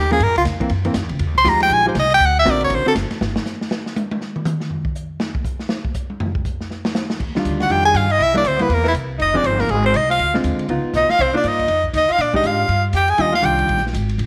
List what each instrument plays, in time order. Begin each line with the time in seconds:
Already playing: upright bass D#2
0.00 soprano saxophone G4
0.11 hollow-body jazz guitar F3 A#3 C#4, soprano saxophone G#4, ride
0.20 upright bass G2, soprano saxophone A#4, kick, ride
0.28 upright bass F2
0.36 upright bass C#2, soprano saxophone F4, ride
0.45 upright bass F2, kick, snare, hi-hat pedal, ride
0.60 hollow-body jazz guitar E3 A#3 C4, kick, ride
0.69 upright bass F#2, ride
0.85 hollow-body jazz guitar E3 A#3 C4, ride
0.94 upright bass F#2, kick, snare, hi-hat pedal, ride
1.02 upright bass E2
1.09 upright bass C#2, ride
1.19 upright bass F2, kick, ride
1.27 upright bass D#2
1.35 upright bass C2, soprano saxophone C6
1.45 upright bass D#2, hollow-body jazz guitar F3 G#3 D#4 G4, kick, snare, hi-hat pedal, ride
1.49 soprano saxophone A#5
1.60 soprano saxophone G5, snare, ride
1.70 upright bass A#1, soprano saxophone G#5, kick, ride
1.85 hollow-body jazz guitar F3 G#3 D#4 G4, soprano saxophone C5
1.95 upright bass C2, kick, snare, hi-hat pedal, ride
1.99 soprano saxophone D#5
2.10 soprano saxophone G5, ride
2.20 upright bass D2, kick, ride
2.26 soprano saxophone F#5
2.39 soprano saxophone E5
2.45 upright bass A#1, hollow-body jazz guitar D3 C4 F#4 A#4, kick, snare, hi-hat pedal, ride
2.50 soprano saxophone D5
2.61 soprano saxophone C#5, ride
2.70 upright bass A1, kick, ride
2.75 soprano saxophone C5
2.85 hollow-body jazz guitar D3 C4 F#4 A#4, soprano saxophone A4, muted upright bass stroke
2.95 upright bass F#1, kick, snare, hi-hat pedal, ride
3.11 muted upright bass stroke, snare, ride
3.21 upright bass G1, snare
3.36 snare
3.46 snare, hi-hat pedal
3.61 snare
3.71 snare
3.86 snare
3.96 hi-hat pedal, high tom
4.11 high tom
4.21 snare
4.36 mid tom
4.45 hi-hat pedal, mid tom
4.60 snare
4.70 floor tom
4.85 kick
4.95 hi-hat pedal
5.20 snare
5.35 kick
5.44 kick, hi-hat pedal
5.59 snare
5.69 snare
5.85 kick
5.94 kick, hi-hat pedal
6.10 high tom
6.20 floor tom
6.35 kick
6.45 kick, hi-hat pedal
6.61 snare
6.71 snare
6.85 snare
6.95 snare, hi-hat pedal
7.10 snare
7.20 upright bass D#2, kick, crash
7.35 hollow-body jazz guitar D#3 G3 D4 F4, snare
7.45 upright bass D2, kick, hi-hat pedal, ride
7.60 tenor saxophone F#4, soprano saxophone F#5, snare, ride
7.69 upright bass F2, hollow-body jazz guitar D#3 G3 D4 F4, tenor saxophone G4, soprano saxophone G5, kick, ride
7.85 tenor saxophone G#4, soprano saxophone G#5
7.94 upright bass G2, tenor saxophone F4, soprano saxophone F5, hi-hat pedal, ride
8.09 tenor saxophone D#4, soprano saxophone D#5, ride
8.18 upright bass C2, tenor saxophone E4, kick, ride
8.23 soprano saxophone E5
8.34 hollow-body jazz guitar G3 A#3 E4, tenor saxophone D4, soprano saxophone D5
8.44 upright bass D2, tenor saxophone C4, soprano saxophone C5, kick, hi-hat pedal, ride
8.57 hollow-body jazz guitar G3 A#3 E4, tenor saxophone B3, ride
8.62 soprano saxophone B4
8.69 upright bass E2, tenor saxophone A#3, kick, ride
8.74 soprano saxophone A#4
8.83 tenor saxophone E3, snare
8.88 soprano saxophone E4
8.94 upright bass C2, kick, hi-hat pedal, ride
9.18 upright bass F1, tenor saxophone D#4, soprano saxophone D#5, kick, ride
9.34 hollow-body jazz guitar F3 C4 D#4 G#4, tenor saxophone D4, soprano saxophone D5
9.43 upright bass G1, tenor saxophone C4, soprano saxophone C5, kick, hi-hat pedal, ride
9.58 tenor saxophone A#3, soprano saxophone A#4, snare, ride
9.68 upright bass G#1, tenor saxophone G#3, soprano saxophone G#4, kick, ride
9.84 tenor saxophone C4, soprano saxophone C5
9.94 upright bass C2, tenor saxophone D#4, soprano saxophone D#5, kick, hi-hat pedal, ride
10.09 tenor saxophone F4, soprano saxophone F5, snare, ride
10.19 upright bass D2, kick, ride
10.34 hollow-body jazz guitar D3 G#3 C4 F4, snare
10.44 upright bass D#2, kick, hi-hat pedal, ride
10.59 ride
10.68 upright bass C#2, hollow-body jazz guitar B3 D#4 F4, kick, ride
10.84 muted upright bass stroke
10.93 upright bass B1, tenor saxophone D#4, soprano saxophone D#5, snare, hi-hat pedal
11.09 tenor saxophone F4, soprano saxophone F5, muted upright bass stroke, snare
11.19 upright bass C2, tenor saxophone C4, soprano saxophone C5, kick, crash
11.34 hollow-body jazz guitar A#3 D#4 F4, tenor saxophone D4, soprano saxophone D5
11.44 upright bass G2, tenor saxophone D#4, kick, hi-hat pedal, ride
11.48 soprano saxophone D#5
11.59 kick, ride
11.68 upright bass F2, kick, ride
11.84 kick
11.93 upright bass D#2, tenor saxophone D#4, soprano saxophone D#5, kick, hi-hat pedal, ride
12.09 tenor saxophone F4, soprano saxophone F5, muted upright bass stroke, ride
12.18 upright bass A#2, tenor saxophone D4, soprano saxophone D5, kick, ride
12.34 hollow-body jazz guitar G#3 D4 G4, tenor saxophone D#4, soprano saxophone D#5, kick
12.44 upright bass G#2, tenor saxophone F4, soprano saxophone F5, kick, hi-hat pedal, ride
12.68 upright bass G2, kick, ride
12.93 upright bass F2, tenor saxophone G4, soprano saxophone G5, kick, hi-hat pedal, ride
13.08 tenor saxophone G#4, soprano saxophone G#5, ride
13.18 upright bass D#2, hollow-body jazz guitar D#3 G3 D4 F4, tenor saxophone D#4, soprano saxophone D#5, kick, ride
13.32 tenor saxophone F4, soprano saxophone F5, snare
13.42 upright bass C2, hollow-body jazz guitar D#3 G3 D4 F4, tenor saxophone G4, soprano saxophone G5, kick, hi-hat pedal, ride
13.59 ride
13.68 upright bass A#1, kick, ride
13.77 snare
13.86 snare
13.93 upright bass G#1, kick, hi-hat pedal, ride
14.09 ride
14.18 upright bass A#1, kick, ride